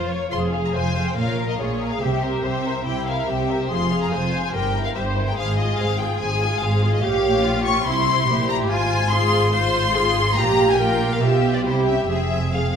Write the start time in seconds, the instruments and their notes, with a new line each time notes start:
Already playing: double bass section F1, cello section F2
0.09 violin section C#5
0.31 double bass section F1, cello section F2, violin section F4 C5 C6, viola section G#4
0.52 violin section G#4 F5
0.65 violin section A#5
0.74 double bass section F1, cello section F2, violin section F4 C5 G#5, viola section C5
0.96 violin section G#4 F5
1.07 violin section G5
1.16 double bass section A#1, cello section A#2, violin section F4 C#5 F5, viola section A#4
1.40 violin section A#4 F5
1.49 violin section D#5
1.59 double bass section A#1, cello section A#2, violin section F4 C#5, viola section G#4
1.81 violin section A#4 F5
1.92 violin section F5
2.01 double bass section C2, cello section C3, viola section G4, violin section G4 C5 E5
2.23 violin section A#4 C5 E5
2.43 double bass section C2, cello section C3, violin section G4 C5 E5, viola section C5
2.65 violin section A#4 E5
2.86 double bass section C2, cello section C3, viola section E4, violin section G4 C5 G5
3.06 violin section A#4 E5 F5
3.27 double bass section C2, cello section C3, viola section G4, violin section G4 C5 E5
3.49 violin section A#4 E5
3.59 violin section C5
3.70 double bass section F1, cello section F2, violin section F4 C5 C6, viola section G#4
3.91 violin section G#4 F5
4.01 violin section A#5
4.11 double bass section F1, cello section F2, violin section F4 C5 G#5, viola section C5
4.32 violin section G#4 F5
4.44 violin section G#5
4.53 double bass section G1, cello section G2, violin section G4 C5 G5, viola section A#4
4.76 violin section E4 A#4
4.85 violin section F5
4.95 double bass section G1, cello section G2, violin section G4 C5 E5, viola section C5
5.17 violin section E4 A#4
5.28 violin section G5
5.37 double bass section G#1, cello section G#2, viola section G#4, violin section G#4 C5 F5
5.58 violin section F4 G#4 D#5
5.79 double bass section G#1, cello section G#2, violin section G#4 C5 F5
6.01 violin section F4 G#4 G5
6.20 double bass section G#1, cello section G#2, violin section G#4 C5 G#5
6.42 violin section F4 G#4
6.61 double bass section G#1, cello section G#2, violin section G#4 C5 F5
6.83 violin section F4 G#4
6.94 violin section D#5
7.03 double bass section A#1, cello section A#2, viola section G4, violin section G4 C#5 F5
7.44 viola section F4
7.65 violin section C#6
7.85 double bass section C2, cello section C3, violin section E4 C5 C6, viola section E4
8.27 double bass section A#1, cello section A#2, viola section G4
8.49 violin section A#5
8.69 double bass section G#1, cello section G#2, viola section F4, violin section F4 C5 G#5
9.11 violin section F4 C5 C6, viola section G#4
9.53 violin section F4 C5 C6, viola section C5
9.95 viola section G#4
10.37 double bass section A#1, cello section A#2, violin section F4 G4 A#5, viola section G4
10.69 violin section G#5
10.79 violin section F4 G4 G5, viola section A#4
11.13 violin section F5
11.22 double bass section B1, cello section B2, violin section F4 G4 E5, viola section G4
11.54 violin section D5
11.65 double bass section C2, cello section C3, violin section E4 G4 C5, viola section G4
11.87 violin section C#4 E5
12.08 double bass section F1, cello section F2, violin section C4 G#4 E5, viola section G#4
12.54 violin section C4 G#4 F5, viola section G#4